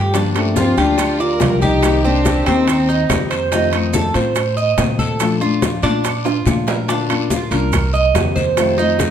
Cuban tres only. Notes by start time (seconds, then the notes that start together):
Already playing: G4
0.14 D4
0.56 F4
0.78 G4
1.20 D5
1.62 G4
2.05 C4
2.46 C4
2.89 D#4
3.31 C5
3.52 D#4
3.93 A4
4.15 C5
4.57 D#5
4.99 A4
5.41 F4
5.83 D4
6.25 F4
6.67 A#4
6.89 D4
7.30 F4
7.51 A#4
7.94 D#5
8.36 C5
8.78 D#4